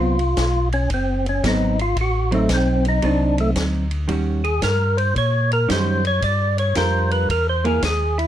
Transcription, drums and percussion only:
0, 0, Header, 1, 2, 480
1, 0, Start_track
1, 0, Tempo, 532387
1, 1770, Time_signature, 4, 2, 24, 8
1, 7457, End_track
2, 0, Start_track
2, 0, Title_t, "Drums"
2, 171, Note_on_c, 9, 51, 44
2, 261, Note_off_c, 9, 51, 0
2, 332, Note_on_c, 9, 44, 50
2, 332, Note_on_c, 9, 51, 68
2, 333, Note_on_c, 9, 38, 69
2, 335, Note_on_c, 9, 36, 25
2, 422, Note_off_c, 9, 44, 0
2, 422, Note_off_c, 9, 51, 0
2, 424, Note_off_c, 9, 38, 0
2, 425, Note_off_c, 9, 36, 0
2, 653, Note_on_c, 9, 51, 46
2, 743, Note_off_c, 9, 51, 0
2, 809, Note_on_c, 9, 51, 64
2, 813, Note_on_c, 9, 36, 25
2, 899, Note_off_c, 9, 51, 0
2, 903, Note_off_c, 9, 36, 0
2, 1137, Note_on_c, 9, 51, 45
2, 1227, Note_off_c, 9, 51, 0
2, 1296, Note_on_c, 9, 36, 27
2, 1297, Note_on_c, 9, 44, 58
2, 1297, Note_on_c, 9, 51, 70
2, 1299, Note_on_c, 9, 38, 67
2, 1386, Note_off_c, 9, 36, 0
2, 1387, Note_off_c, 9, 44, 0
2, 1387, Note_off_c, 9, 51, 0
2, 1389, Note_off_c, 9, 38, 0
2, 1616, Note_on_c, 9, 51, 49
2, 1706, Note_off_c, 9, 51, 0
2, 1772, Note_on_c, 9, 36, 23
2, 1772, Note_on_c, 9, 51, 63
2, 1862, Note_off_c, 9, 51, 0
2, 1863, Note_off_c, 9, 36, 0
2, 2091, Note_on_c, 9, 51, 45
2, 2181, Note_off_c, 9, 51, 0
2, 2244, Note_on_c, 9, 44, 58
2, 2244, Note_on_c, 9, 51, 68
2, 2246, Note_on_c, 9, 38, 66
2, 2250, Note_on_c, 9, 36, 18
2, 2335, Note_off_c, 9, 44, 0
2, 2335, Note_off_c, 9, 51, 0
2, 2336, Note_off_c, 9, 38, 0
2, 2340, Note_off_c, 9, 36, 0
2, 2567, Note_on_c, 9, 51, 49
2, 2658, Note_off_c, 9, 51, 0
2, 2724, Note_on_c, 9, 51, 60
2, 2729, Note_on_c, 9, 36, 20
2, 2814, Note_off_c, 9, 51, 0
2, 2820, Note_off_c, 9, 36, 0
2, 3047, Note_on_c, 9, 51, 50
2, 3137, Note_off_c, 9, 51, 0
2, 3205, Note_on_c, 9, 44, 64
2, 3205, Note_on_c, 9, 51, 69
2, 3207, Note_on_c, 9, 38, 69
2, 3209, Note_on_c, 9, 36, 23
2, 3295, Note_off_c, 9, 44, 0
2, 3295, Note_off_c, 9, 51, 0
2, 3297, Note_off_c, 9, 38, 0
2, 3299, Note_off_c, 9, 36, 0
2, 3524, Note_on_c, 9, 51, 49
2, 3614, Note_off_c, 9, 51, 0
2, 3683, Note_on_c, 9, 51, 63
2, 3689, Note_on_c, 9, 36, 18
2, 3773, Note_off_c, 9, 51, 0
2, 3779, Note_off_c, 9, 36, 0
2, 4006, Note_on_c, 9, 51, 46
2, 4097, Note_off_c, 9, 51, 0
2, 4164, Note_on_c, 9, 44, 56
2, 4164, Note_on_c, 9, 51, 67
2, 4166, Note_on_c, 9, 38, 68
2, 4170, Note_on_c, 9, 36, 24
2, 4255, Note_off_c, 9, 44, 0
2, 4255, Note_off_c, 9, 51, 0
2, 4256, Note_off_c, 9, 38, 0
2, 4260, Note_off_c, 9, 36, 0
2, 4490, Note_on_c, 9, 51, 49
2, 4580, Note_off_c, 9, 51, 0
2, 4652, Note_on_c, 9, 51, 62
2, 4653, Note_on_c, 9, 36, 27
2, 4742, Note_off_c, 9, 51, 0
2, 4743, Note_off_c, 9, 36, 0
2, 4972, Note_on_c, 9, 51, 46
2, 5062, Note_off_c, 9, 51, 0
2, 5134, Note_on_c, 9, 36, 22
2, 5135, Note_on_c, 9, 44, 52
2, 5135, Note_on_c, 9, 51, 72
2, 5137, Note_on_c, 9, 38, 75
2, 5224, Note_off_c, 9, 36, 0
2, 5225, Note_off_c, 9, 44, 0
2, 5225, Note_off_c, 9, 51, 0
2, 5227, Note_off_c, 9, 38, 0
2, 5451, Note_on_c, 9, 51, 50
2, 5541, Note_off_c, 9, 51, 0
2, 5610, Note_on_c, 9, 51, 68
2, 5613, Note_on_c, 9, 36, 24
2, 5700, Note_off_c, 9, 51, 0
2, 5703, Note_off_c, 9, 36, 0
2, 5933, Note_on_c, 9, 51, 49
2, 6023, Note_off_c, 9, 51, 0
2, 6088, Note_on_c, 9, 44, 50
2, 6088, Note_on_c, 9, 51, 70
2, 6089, Note_on_c, 9, 38, 65
2, 6094, Note_on_c, 9, 36, 17
2, 6178, Note_off_c, 9, 44, 0
2, 6178, Note_off_c, 9, 51, 0
2, 6179, Note_off_c, 9, 38, 0
2, 6184, Note_off_c, 9, 36, 0
2, 6413, Note_on_c, 9, 51, 47
2, 6503, Note_off_c, 9, 51, 0
2, 6578, Note_on_c, 9, 36, 24
2, 6580, Note_on_c, 9, 51, 66
2, 6668, Note_off_c, 9, 36, 0
2, 6670, Note_off_c, 9, 51, 0
2, 6896, Note_on_c, 9, 51, 48
2, 6986, Note_off_c, 9, 51, 0
2, 7055, Note_on_c, 9, 44, 65
2, 7055, Note_on_c, 9, 51, 76
2, 7056, Note_on_c, 9, 38, 74
2, 7058, Note_on_c, 9, 36, 23
2, 7145, Note_off_c, 9, 44, 0
2, 7145, Note_off_c, 9, 51, 0
2, 7147, Note_off_c, 9, 38, 0
2, 7148, Note_off_c, 9, 36, 0
2, 7383, Note_on_c, 9, 51, 49
2, 7457, Note_off_c, 9, 51, 0
2, 7457, End_track
0, 0, End_of_file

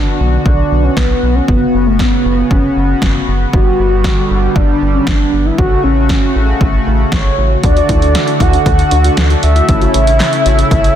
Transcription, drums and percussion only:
0, 0, Header, 1, 2, 480
1, 0, Start_track
1, 0, Tempo, 512821
1, 1388, Time_signature, 4, 2, 24, 8
1, 10253, End_track
2, 0, Start_track
2, 0, Title_t, "Drums"
2, 427, Note_on_c, 9, 36, 98
2, 521, Note_off_c, 9, 36, 0
2, 906, Note_on_c, 9, 36, 111
2, 910, Note_on_c, 9, 38, 106
2, 999, Note_off_c, 9, 36, 0
2, 1004, Note_off_c, 9, 38, 0
2, 1388, Note_on_c, 9, 36, 99
2, 1482, Note_off_c, 9, 36, 0
2, 1866, Note_on_c, 9, 36, 103
2, 1871, Note_on_c, 9, 38, 104
2, 1959, Note_off_c, 9, 36, 0
2, 1965, Note_off_c, 9, 38, 0
2, 2347, Note_on_c, 9, 36, 103
2, 2441, Note_off_c, 9, 36, 0
2, 2825, Note_on_c, 9, 36, 113
2, 2831, Note_on_c, 9, 38, 104
2, 2919, Note_off_c, 9, 36, 0
2, 2924, Note_off_c, 9, 38, 0
2, 3308, Note_on_c, 9, 36, 101
2, 3402, Note_off_c, 9, 36, 0
2, 3785, Note_on_c, 9, 36, 103
2, 3789, Note_on_c, 9, 38, 102
2, 3878, Note_off_c, 9, 36, 0
2, 3883, Note_off_c, 9, 38, 0
2, 4266, Note_on_c, 9, 36, 102
2, 4359, Note_off_c, 9, 36, 0
2, 4744, Note_on_c, 9, 36, 115
2, 4748, Note_on_c, 9, 38, 105
2, 4838, Note_off_c, 9, 36, 0
2, 4842, Note_off_c, 9, 38, 0
2, 5227, Note_on_c, 9, 36, 104
2, 5320, Note_off_c, 9, 36, 0
2, 5704, Note_on_c, 9, 36, 107
2, 5708, Note_on_c, 9, 38, 106
2, 5797, Note_off_c, 9, 36, 0
2, 5801, Note_off_c, 9, 38, 0
2, 6185, Note_on_c, 9, 36, 105
2, 6279, Note_off_c, 9, 36, 0
2, 6664, Note_on_c, 9, 36, 113
2, 6668, Note_on_c, 9, 38, 101
2, 6757, Note_off_c, 9, 36, 0
2, 6761, Note_off_c, 9, 38, 0
2, 7146, Note_on_c, 9, 42, 70
2, 7147, Note_on_c, 9, 36, 105
2, 7240, Note_off_c, 9, 42, 0
2, 7241, Note_off_c, 9, 36, 0
2, 7269, Note_on_c, 9, 42, 51
2, 7362, Note_off_c, 9, 42, 0
2, 7386, Note_on_c, 9, 36, 99
2, 7386, Note_on_c, 9, 42, 91
2, 7479, Note_off_c, 9, 36, 0
2, 7480, Note_off_c, 9, 42, 0
2, 7509, Note_on_c, 9, 42, 59
2, 7602, Note_off_c, 9, 42, 0
2, 7627, Note_on_c, 9, 42, 77
2, 7628, Note_on_c, 9, 38, 105
2, 7721, Note_off_c, 9, 42, 0
2, 7722, Note_off_c, 9, 38, 0
2, 7746, Note_on_c, 9, 42, 58
2, 7839, Note_off_c, 9, 42, 0
2, 7864, Note_on_c, 9, 36, 85
2, 7868, Note_on_c, 9, 42, 77
2, 7958, Note_off_c, 9, 36, 0
2, 7962, Note_off_c, 9, 42, 0
2, 7988, Note_on_c, 9, 42, 52
2, 8081, Note_off_c, 9, 42, 0
2, 8105, Note_on_c, 9, 36, 89
2, 8107, Note_on_c, 9, 42, 70
2, 8199, Note_off_c, 9, 36, 0
2, 8201, Note_off_c, 9, 42, 0
2, 8227, Note_on_c, 9, 42, 49
2, 8320, Note_off_c, 9, 42, 0
2, 8343, Note_on_c, 9, 42, 77
2, 8437, Note_off_c, 9, 42, 0
2, 8466, Note_on_c, 9, 42, 61
2, 8559, Note_off_c, 9, 42, 0
2, 8584, Note_on_c, 9, 42, 65
2, 8587, Note_on_c, 9, 38, 112
2, 8678, Note_off_c, 9, 42, 0
2, 8680, Note_off_c, 9, 38, 0
2, 8708, Note_on_c, 9, 42, 53
2, 8802, Note_off_c, 9, 42, 0
2, 8826, Note_on_c, 9, 42, 82
2, 8919, Note_off_c, 9, 42, 0
2, 8947, Note_on_c, 9, 42, 55
2, 9041, Note_off_c, 9, 42, 0
2, 9066, Note_on_c, 9, 42, 74
2, 9067, Note_on_c, 9, 36, 109
2, 9159, Note_off_c, 9, 42, 0
2, 9161, Note_off_c, 9, 36, 0
2, 9187, Note_on_c, 9, 42, 52
2, 9281, Note_off_c, 9, 42, 0
2, 9306, Note_on_c, 9, 42, 93
2, 9400, Note_off_c, 9, 42, 0
2, 9429, Note_on_c, 9, 42, 59
2, 9522, Note_off_c, 9, 42, 0
2, 9548, Note_on_c, 9, 42, 81
2, 9549, Note_on_c, 9, 38, 107
2, 9549, Note_on_c, 9, 39, 91
2, 9642, Note_off_c, 9, 42, 0
2, 9643, Note_off_c, 9, 38, 0
2, 9643, Note_off_c, 9, 39, 0
2, 9667, Note_on_c, 9, 42, 59
2, 9761, Note_off_c, 9, 42, 0
2, 9789, Note_on_c, 9, 42, 74
2, 9883, Note_off_c, 9, 42, 0
2, 9909, Note_on_c, 9, 42, 51
2, 10003, Note_off_c, 9, 42, 0
2, 10026, Note_on_c, 9, 36, 88
2, 10029, Note_on_c, 9, 42, 73
2, 10120, Note_off_c, 9, 36, 0
2, 10123, Note_off_c, 9, 42, 0
2, 10150, Note_on_c, 9, 42, 48
2, 10243, Note_off_c, 9, 42, 0
2, 10253, End_track
0, 0, End_of_file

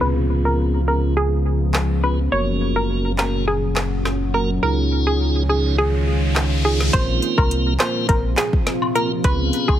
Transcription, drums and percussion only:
0, 0, Header, 1, 2, 480
1, 0, Start_track
1, 0, Key_signature, -5, "minor"
1, 0, Tempo, 576923
1, 12, Time_signature, 4, 2, 24, 8
1, 8150, End_track
2, 0, Start_track
2, 0, Title_t, "Drums"
2, 1449, Note_on_c, 9, 39, 92
2, 1453, Note_on_c, 9, 37, 96
2, 1453, Note_on_c, 9, 38, 114
2, 1532, Note_off_c, 9, 39, 0
2, 1536, Note_off_c, 9, 37, 0
2, 1536, Note_off_c, 9, 38, 0
2, 2650, Note_on_c, 9, 39, 81
2, 2654, Note_on_c, 9, 38, 103
2, 2733, Note_off_c, 9, 39, 0
2, 2737, Note_off_c, 9, 38, 0
2, 3129, Note_on_c, 9, 39, 84
2, 3133, Note_on_c, 9, 38, 110
2, 3212, Note_off_c, 9, 39, 0
2, 3216, Note_off_c, 9, 38, 0
2, 3373, Note_on_c, 9, 37, 93
2, 3373, Note_on_c, 9, 38, 66
2, 3456, Note_off_c, 9, 37, 0
2, 3456, Note_off_c, 9, 38, 0
2, 5290, Note_on_c, 9, 39, 88
2, 5294, Note_on_c, 9, 37, 94
2, 5294, Note_on_c, 9, 38, 108
2, 5373, Note_off_c, 9, 39, 0
2, 5377, Note_off_c, 9, 37, 0
2, 5377, Note_off_c, 9, 38, 0
2, 5661, Note_on_c, 9, 38, 61
2, 5745, Note_off_c, 9, 38, 0
2, 5772, Note_on_c, 9, 42, 84
2, 5772, Note_on_c, 9, 76, 82
2, 5773, Note_on_c, 9, 36, 113
2, 5855, Note_off_c, 9, 42, 0
2, 5855, Note_off_c, 9, 76, 0
2, 5856, Note_off_c, 9, 36, 0
2, 6010, Note_on_c, 9, 42, 60
2, 6013, Note_on_c, 9, 69, 71
2, 6094, Note_off_c, 9, 42, 0
2, 6096, Note_off_c, 9, 69, 0
2, 6140, Note_on_c, 9, 36, 99
2, 6140, Note_on_c, 9, 76, 81
2, 6223, Note_off_c, 9, 36, 0
2, 6223, Note_off_c, 9, 76, 0
2, 6250, Note_on_c, 9, 42, 86
2, 6333, Note_off_c, 9, 42, 0
2, 6487, Note_on_c, 9, 39, 91
2, 6489, Note_on_c, 9, 42, 48
2, 6491, Note_on_c, 9, 38, 110
2, 6492, Note_on_c, 9, 69, 74
2, 6492, Note_on_c, 9, 76, 72
2, 6570, Note_off_c, 9, 39, 0
2, 6572, Note_off_c, 9, 42, 0
2, 6574, Note_off_c, 9, 38, 0
2, 6576, Note_off_c, 9, 69, 0
2, 6576, Note_off_c, 9, 76, 0
2, 6730, Note_on_c, 9, 42, 82
2, 6732, Note_on_c, 9, 36, 89
2, 6813, Note_off_c, 9, 42, 0
2, 6816, Note_off_c, 9, 36, 0
2, 6967, Note_on_c, 9, 39, 95
2, 6969, Note_on_c, 9, 42, 54
2, 6971, Note_on_c, 9, 38, 121
2, 6973, Note_on_c, 9, 69, 84
2, 7051, Note_off_c, 9, 39, 0
2, 7053, Note_off_c, 9, 42, 0
2, 7054, Note_off_c, 9, 38, 0
2, 7056, Note_off_c, 9, 69, 0
2, 7098, Note_on_c, 9, 36, 92
2, 7181, Note_off_c, 9, 36, 0
2, 7211, Note_on_c, 9, 38, 76
2, 7212, Note_on_c, 9, 42, 74
2, 7294, Note_off_c, 9, 38, 0
2, 7295, Note_off_c, 9, 42, 0
2, 7339, Note_on_c, 9, 76, 85
2, 7422, Note_off_c, 9, 76, 0
2, 7451, Note_on_c, 9, 42, 55
2, 7452, Note_on_c, 9, 69, 71
2, 7534, Note_off_c, 9, 42, 0
2, 7535, Note_off_c, 9, 69, 0
2, 7689, Note_on_c, 9, 42, 82
2, 7690, Note_on_c, 9, 76, 85
2, 7691, Note_on_c, 9, 36, 112
2, 7772, Note_off_c, 9, 42, 0
2, 7774, Note_off_c, 9, 36, 0
2, 7774, Note_off_c, 9, 76, 0
2, 7930, Note_on_c, 9, 42, 61
2, 7934, Note_on_c, 9, 69, 71
2, 8013, Note_off_c, 9, 42, 0
2, 8018, Note_off_c, 9, 69, 0
2, 8060, Note_on_c, 9, 36, 99
2, 8061, Note_on_c, 9, 76, 80
2, 8143, Note_off_c, 9, 36, 0
2, 8145, Note_off_c, 9, 76, 0
2, 8150, End_track
0, 0, End_of_file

